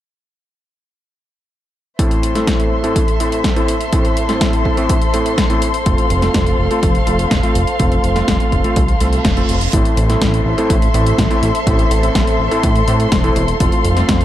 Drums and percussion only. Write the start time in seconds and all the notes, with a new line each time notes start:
1.99 kick, closed hi-hat
2.11 closed hi-hat
2.23 closed hi-hat
2.35 snare, closed hi-hat
2.47 kick, snare, closed hi-hat
2.60 closed hi-hat
2.84 closed hi-hat
2.96 kick, closed hi-hat
3.08 closed hi-hat
3.20 closed hi-hat
3.32 closed hi-hat
3.44 kick, snare, closed hi-hat
3.56 closed hi-hat
3.68 closed hi-hat
3.81 closed hi-hat
3.93 kick, closed hi-hat
4.05 closed hi-hat
4.17 closed hi-hat
4.29 snare, closed hi-hat
4.41 kick, snare, closed hi-hat
4.53 closed hi-hat
4.65 kick
4.77 closed hi-hat
4.89 kick, closed hi-hat
5.02 closed hi-hat
5.14 closed hi-hat
5.26 closed hi-hat
5.38 kick, snare, closed hi-hat
5.50 closed hi-hat
5.62 closed hi-hat
5.74 closed hi-hat
5.86 kick, closed hi-hat
5.98 closed hi-hat
6.10 closed hi-hat
6.22 snare, closed hi-hat
6.34 kick, snare, closed hi-hat
6.47 closed hi-hat
6.71 closed hi-hat
6.83 kick, closed hi-hat
6.95 closed hi-hat
7.07 closed hi-hat
7.19 closed hi-hat
7.31 kick, snare, closed hi-hat
7.43 closed hi-hat
7.55 closed hi-hat
7.67 closed hi-hat
7.80 kick, closed hi-hat
7.92 closed hi-hat
8.04 closed hi-hat
8.16 snare, closed hi-hat
8.28 kick, snare, closed hi-hat
8.40 closed hi-hat
8.52 kick, closed hi-hat
8.64 closed hi-hat
8.76 kick, closed hi-hat
8.88 closed hi-hat
9.01 closed hi-hat
9.13 closed hi-hat
9.25 kick, snare, closed hi-hat
9.37 closed hi-hat
9.49 closed hi-hat
9.61 closed hi-hat
9.73 kick, closed hi-hat
9.85 closed hi-hat
9.97 closed hi-hat
10.10 snare, closed hi-hat
10.22 kick, snare, closed hi-hat
10.34 closed hi-hat
10.58 closed hi-hat
10.70 kick, closed hi-hat
10.82 closed hi-hat
10.94 closed hi-hat
11.06 closed hi-hat
11.18 kick, snare, closed hi-hat
11.31 closed hi-hat
11.43 closed hi-hat
11.55 closed hi-hat
11.67 kick, closed hi-hat
11.79 closed hi-hat
11.91 closed hi-hat
12.03 closed hi-hat
12.15 kick, snare, closed hi-hat
12.27 closed hi-hat
12.51 closed hi-hat
12.63 kick, closed hi-hat
12.76 closed hi-hat
12.88 closed hi-hat
13.00 closed hi-hat
13.12 kick, snare, closed hi-hat
13.24 closed hi-hat
13.36 closed hi-hat
13.48 closed hi-hat
13.60 kick, closed hi-hat
13.72 closed hi-hat
13.85 closed hi-hat
13.97 snare, closed hi-hat
14.09 kick, snare, closed hi-hat
14.21 closed hi-hat